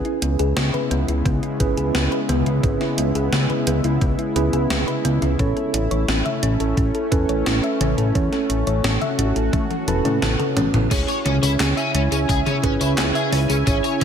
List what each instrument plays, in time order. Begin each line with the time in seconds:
Already playing: analog synth pad C#3 G#3 B3 E4, tine electric piano C#4 E4 G#4 B4
0.05 synth arpeggio sound E4, closed hi-hat
0.22 analog synth bass C#2, synth arpeggio sound B3, closed hi-hat
0.39 analog synth bass C#2, synth arpeggio sound G#4, closed hi-hat
0.56 analog synth bass C#2, synth arpeggio sound B3, snare, closed hi-hat
0.74 synth arpeggio sound B4, closed hi-hat, mid tom
0.91 analog synth bass C#2, synth arpeggio sound B3, closed hi-hat
1.08 analog synth bass C#2, synth arpeggio sound E4, closed hi-hat
1.26 analog synth bass C#2, synth arpeggio sound B3, kick, closed hi-hat
1.43 synth arpeggio sound E4, closed hi-hat
1.60 analog synth bass G#1, synth arpeggio sound B3, tine electric piano C#4 E4 G#4 B4, kick, closed hi-hat
1.77 analog synth bass C#2, synth arpeggio sound G#4, closed hi-hat
1.94 analog synth bass C#2, synth arpeggio sound B3, snare, closed hi-hat
2.12 synth arpeggio sound B4, closed hi-hat
2.29 analog synth bass C#2, synth arpeggio sound B3, closed hi-hat, mid tom
2.46 analog synth bass C#2, synth arpeggio sound E4, closed hi-hat
2.63 analog synth bass G#1, synth arpeggio sound B3, tine electric piano C#4 E4 G#4 B4, kick, closed hi-hat
2.81 synth arpeggio sound E4, snare, closed hi-hat
2.98 analog synth bass C#2, synth arpeggio sound B3, closed hi-hat
3.15 analog synth bass C#2, synth arpeggio sound G#4, closed hi-hat
3.32 analog synth bass C#2, synth arpeggio sound B3, snare, closed hi-hat
3.50 synth arpeggio sound B4, closed hi-hat, mid tom
3.67 analog synth bass C#2, synth arpeggio sound B3, closed hi-hat
3.84 analog synth bass C#2, synth arpeggio sound E4, closed hi-hat
4.01 analog synth bass C#2, synth arpeggio sound B3, kick, closed hi-hat
4.19 synth arpeggio sound E4, closed hi-hat
4.36 analog synth bass C#2, synth arpeggio sound B3, tine electric piano C#4 E4 G#4 B4, closed hi-hat
4.53 analog synth bass C#2, synth arpeggio sound G#4, closed hi-hat
4.70 analog synth bass C#2, synth arpeggio sound B3, snare, closed hi-hat, mid tom
4.88 synth arpeggio sound B4, closed hi-hat
5.05 analog synth bass C#2, synth arpeggio sound B3, closed hi-hat
5.22 analog synth bass C#2, synth arpeggio sound E4, closed hi-hat, mid tom
5.39 analog synth bass A1, analog synth pad A3 C#4, synth arpeggio sound C#4, tine electric piano C#4 E4 A4 C#5, kick, closed hi-hat
5.57 synth arpeggio sound A4, closed hi-hat
5.74 analog synth bass A1, synth arpeggio sound C#4, closed hi-hat
5.91 analog synth bass A1, synth arpeggio sound C#5, closed hi-hat
6.08 analog synth bass A1, synth arpeggio sound C#4, snare, closed hi-hat
6.25 synth arpeggio sound E5, closed hi-hat, mid tom
6.43 analog synth bass A1, synth arpeggio sound C#4, closed hi-hat
6.60 analog synth bass A1, synth arpeggio sound A4, closed hi-hat
6.77 analog synth bass A1, synth arpeggio sound C#4, kick, closed hi-hat
6.95 synth arpeggio sound A4, closed hi-hat
7.12 analog synth bass E2, tine electric piano C#4 E4 A4 B4, synth arpeggio sound C#4, kick, closed hi-hat
7.29 analog synth bass A1, synth arpeggio sound C#5, closed hi-hat
7.46 analog synth bass A1, synth arpeggio sound C#4, snare, closed hi-hat
7.64 synth arpeggio sound E5, closed hi-hat
7.81 analog synth bass A1, synth arpeggio sound C#4, closed hi-hat, mid tom
7.98 analog synth bass A1, synth arpeggio sound A4, closed hi-hat
8.15 analog synth bass E2, tine electric piano C#4 E4 A4 C#5, synth arpeggio sound C#4, analog synth pad F#4, kick, closed hi-hat
8.33 synth arpeggio sound A4, snare, closed hi-hat
8.50 analog synth bass A1, synth arpeggio sound C#4, closed hi-hat
8.67 analog synth bass A1, synth arpeggio sound C#5, closed hi-hat
8.84 analog synth bass A1, synth arpeggio sound C#4, snare, closed hi-hat
9.01 synth arpeggio sound E5, closed hi-hat, mid tom
9.19 analog synth bass A1, synth arpeggio sound C#4, closed hi-hat
9.36 analog synth bass A1, synth arpeggio sound A4, closed hi-hat
9.53 analog synth bass A2, synth arpeggio sound C#4, kick, closed hi-hat, high tom
9.71 synth arpeggio sound A4, closed hi-hat, high tom
9.87 analog synth bass E1, tine electric piano C#4 E4 A4 B4, synth arpeggio sound A5, closed hi-hat, high tom
10.05 analog synth bass A2, synth arpeggio sound C#4, closed hi-hat, mid tom
10.22 analog synth bass A1, synth arpeggio sound A5, snare, closed hi-hat, mid tom
10.39 synth arpeggio sound A4, closed hi-hat, mid tom
10.57 analog synth bass A1, synth arpeggio sound C#4, closed hi-hat, mid tom
10.74 analog synth bass A1, synth arpeggio sound E4, closed hi-hat, mid tom
10.91 analog synth bass C#2, analog synth pad C#3 C#4 E4 G#5, synth arpeggio sound C#4, overdriven electric guitar C#4, tine electric piano C#4 E4 G#4 C#5, kick, closed hi-hat, crash, tambourine
11.08 synth arpeggio sound G#4, overdriven electric guitar C#5, closed hi-hat, tambourine
11.25 analog synth bass C#2, synth arpeggio sound C#4, overdriven electric guitar C#4, closed hi-hat, mid tom
11.43 analog synth bass C#2, overdriven electric guitar E4, synth arpeggio sound C#5, closed hi-hat, tambourine
11.60 analog synth bass C#2, synth arpeggio sound C#4, overdriven electric guitar C#4, snare, clap, closed hi-hat, tambourine
11.77 overdriven electric guitar C#4, synth arpeggio sound E5, closed hi-hat, tambourine
11.94 analog synth bass C#2, synth arpeggio sound C#4, overdriven electric guitar C#4, closed hi-hat
12.12 analog synth bass C#2, overdriven electric guitar C#4, synth arpeggio sound G#4, closed hi-hat, tambourine
12.29 analog synth bass C#2, synth arpeggio sound C#4, overdriven electric guitar G#4, kick, closed hi-hat, tambourine
12.46 overdriven electric guitar C#4, synth arpeggio sound G#4, closed hi-hat, mid tom, tambourine
12.63 analog synth bass G#1, overdriven electric guitar C#4, tine electric piano C#4 E4 G#4 B4, synth arpeggio sound C#4, kick, closed hi-hat
12.80 analog synth bass C#2, overdriven electric guitar E4, synth arpeggio sound C#5, closed hi-hat, tambourine
12.98 analog synth bass C#2, synth arpeggio sound C#4, overdriven electric guitar C#4, snare, clap, closed hi-hat, tambourine
13.15 overdriven electric guitar G#4, synth arpeggio sound E5, closed hi-hat, tambourine
13.32 analog synth bass C#2, overdriven electric guitar C#4, synth arpeggio sound C#4, open hi-hat
13.49 analog synth bass C#2, overdriven electric guitar C#4, synth arpeggio sound G#4, closed hi-hat, tambourine
13.67 analog synth bass G#1, overdriven electric guitar C#4, tine electric piano C#4 E4 G#4 C#5, synth arpeggio sound C#4, kick, closed hi-hat, tambourine
13.84 synth arpeggio sound G#4, overdriven electric guitar C#5, closed hi-hat, tambourine